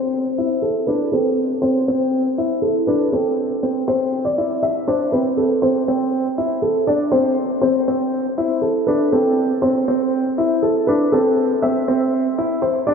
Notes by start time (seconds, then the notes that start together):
Already playing: C4 C5
0.38 E4
0.62 A4
0.87 D4 B4
1.12 C4 A4
1.62 C4 C5
1.88 C4
2.38 E4
2.62 A4
2.87 D4 B4
3.12 C4 A4
3.63 C4
3.88 C4 C5
4.25 D5
4.38 E4
4.63 E5
4.88 D4 C5
5.12 C4 B4
5.37 A4
5.62 C4 C5
5.88 C4
6.38 E4
6.62 A4
6.87 D4 D5
7.12 C4 C5
7.62 C4 C5
7.88 C4
8.38 E4
8.62 A4
8.87 D4 B4
9.12 C4 A4
9.62 C4 C5
9.88 C4
10.38 E4
10.62 A4
10.87 D4 B4
11.12 C4 A4
11.62 C4 E5
11.88 C4
12.38 E4
12.62 C5
12.87 D4 D5